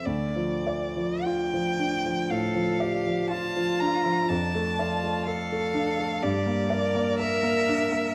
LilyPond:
<<
  \new Staff \with { instrumentName = "Violin" } { \time 4/4 \key d \minor \tempo 4 = 60 d''4 g''4 f''4 a''8 bes''8 | a''4 f''4 d''4 e''4 | }
  \new Staff \with { instrumentName = "Cello" } { \time 4/4 \key d \minor r2 a'8 g'8 f'4 | d'8 f'8 a'4 g'8 bes'4. | }
  \new Staff \with { instrumentName = "Grand piano" } { \time 4/4 \key d \minor d,16 f16 d''16 f16 f'16 f16 d'16 f16 a,16 f16 d''16 f16 f'16 f16 d'16 f16 | f,16 a16 d''16 a16 a'16 a16 d'16 a16 g,16 bes16 d''16 bes16 bes'16 bes16 d'16 bes16 | }
>>